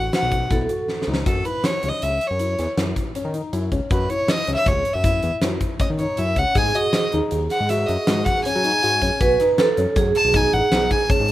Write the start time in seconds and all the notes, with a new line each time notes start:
Already playing: A1 F#4 F#5
0.13 F#4 F#5, snare, closed hi-hat
0.22 B1
0.32 kick, closed hi-hat
0.51 B1 E4 A4, kick, snare, closed hi-hat
0.69 F#4, closed hi-hat
0.88 snare
1.02 snare
1.07 C#2 D#4
1.14 snare
1.26 F#2 F#4 A4, kick, closed hi-hat
1.45 E4 B4, closed hi-hat
1.64 C#5, snare, closed hi-hat
1.82 C#2 C#4, closed hi-hat
1.89 D#5
2.02 C#2 E5, closed hi-hat
2.21 closed hi-hat
2.27 F#2 C#5
2.39 E4, closed hi-hat
2.59 E2, snare, closed hi-hat
2.77 F#2 E4, snare, closed hi-hat
2.96 kick, closed hi-hat
3.15 C#4, closed hi-hat
3.25 D#3
3.34 D#4, closed hi-hat
3.53 F#2 E4, closed hi-hat
3.72 C#2 C#4, kick, closed hi-hat
3.91 F#2 F#4 B4, kick, closed hi-hat
4.09 E4 C#5, closed hi-hat
4.28 D#5, snare, closed hi-hat
4.47 C#2 C#4, closed hi-hat
4.55 E5
4.66 C#2 C#5, kick, closed hi-hat
4.85 closed hi-hat
4.93 F#2 E5
5.04 E4, kick, closed hi-hat
5.22 E2, closed hi-hat
5.42 F#2 E4, snare, closed hi-hat
5.61 kick, closed hi-hat
5.79 C#4 D#5, kick, closed hi-hat
5.90 D#3
5.99 D#4 C#5, closed hi-hat
6.17 F#2 E4 E5, closed hi-hat
6.36 C#2 C#4 F#5, kick, closed hi-hat
6.55 G#2 G#4 G#5, kick, closed hi-hat
6.74 F#4 D#5, closed hi-hat
6.93 snare, closed hi-hat
7.12 D#2 D#4, closed hi-hat
7.31 D#2, closed hi-hat
7.50 F#5, snare, closed hi-hat
7.60 G#2
7.69 F#4 E5, snare, closed hi-hat
7.87 F#2 D#5, closed hi-hat
8.07 G#2 F#4, snare, closed hi-hat
8.25 F#5, kick, snare, closed hi-hat
8.44 C#4 G#5, closed hi-hat
8.56 F#3
8.64 D#4, closed hi-hat
8.83 G#2 F#4, closed hi-hat
9.02 F#2 C#4, kick, closed hi-hat
9.21 B1 F#4 B4, kick, closed hi-hat
9.40 D#4, snare, closed hi-hat
9.51 B4
9.58 A4, snare, closed hi-hat
9.77 F#2 C#4, closed hi-hat
9.96 F#2 G#4, kick, snare, closed hi-hat
10.15 A5, closed hi-hat
10.25 B1
10.34 D#4 G#5, kick, snare, closed hi-hat
10.53 A1 F#5, closed hi-hat
10.72 B1 D#4, snare, closed hi-hat
10.91 G#5, kick, closed hi-hat
11.10 C#4 A5, kick, closed hi-hat
11.20 G#2
11.28 closed hi-hat